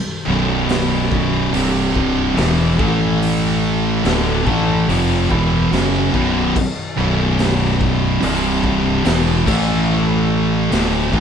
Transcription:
0.27 fingered electric bass B0, distorted electric guitar B1 F#2 B2
0.69 snare, open hi-hat
1.12 kick
1.54 fingered electric bass C1, distorted electric guitar C2 G2 C3, open hi-hat
1.96 kick
2.37 fingered electric bass E1, distorted electric guitar E2 B2 E3, snare, open hi-hat
2.79 fingered electric bass A1, distorted electric guitar A2 E3 A3, kick
3.22 open hi-hat
4.05 fingered electric bass D1, distorted electric guitar D2 A2 D3, snare, open hi-hat
4.46 fingered electric bass A1, distorted electric guitar A2 E3 A3, kick
4.88 fingered electric bass F1, distorted electric guitar F2 C3 F3, open hi-hat
5.30 fingered electric bass E1, distorted electric guitar E2 B2 E3, kick
5.72 fingered electric bass F#1, distorted electric guitar F#2 C#3 F#3, snare, open hi-hat
6.13 fingered electric bass B0, distorted electric guitar B1 F#2 B2, kick
6.56 kick, crash
6.97 fingered electric bass B0, distorted electric guitar B1 F#2 B2
7.39 snare, open hi-hat
7.62 snare
7.81 kick
8.22 fingered electric bass C1, distorted electric guitar C2 G2 C3, open hi-hat
8.64 kick
9.04 fingered electric bass E1, distorted electric guitar E2 B2 E3, snare, open hi-hat
9.29 snare
9.47 fingered electric bass A1, distorted electric guitar A2 E3 A3, kick, crash
10.71 fingered electric bass D1, distorted electric guitar D2 A2 D3, snare, open hi-hat
11.13 fingered electric bass A1, distorted electric guitar A2 E3 A3, kick

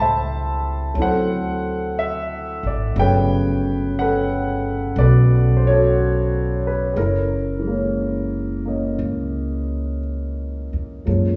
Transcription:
Already playing: upright bass C#2, grand piano G3 A3 C4 E4 E5 G5 B5
0.00 grand piano C5 E5 A5
0.94 upright bass D2, grand piano F#3 A3 C4
1.00 grand piano E4 A4 C5 F#5
1.99 grand piano E5
2.63 upright bass G#1, grand piano D5
2.96 upright bass G1, grand piano C#3 F#3 A3 B3 G5
3.01 grand piano B4 C#5
3.99 grand piano A4 B4 F#5
4.95 upright bass B1, grand piano A3 B3 D5
5.00 grand piano F#4 B4
5.57 grand piano C5
5.67 grand piano F#4 A4 C#5
6.67 grand piano B4
6.93 upright bass F#1, grand piano G#4
6.97 grand piano C#4 E4 A#4
7.59 grand piano E3 G#3
7.67 grand piano A#3 C#4
8.65 grand piano A#3 C#4 D#5
8.99 upright bass C#2
10.73 upright bass E2
11.06 upright bass F#2, grand piano F3 G#3 A#3 C#4

